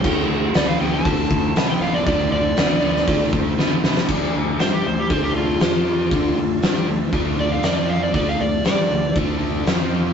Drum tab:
CC |x---------------|----------------|x---------------|----------------|
HH |----o---o---o---|o---o---o-------|----o---o---o---|o---o---o---o---|
SD |----o-------o---|----o--o----o-oo|----o-------o---|----o-------o---|
BD |o-------o-o-----|o-------o-o-----|o-------o-------|o-------o-------|

CC |----------------|
HH |o---o---o---o---|
SD |----o-------o---|
BD |o-------o-------|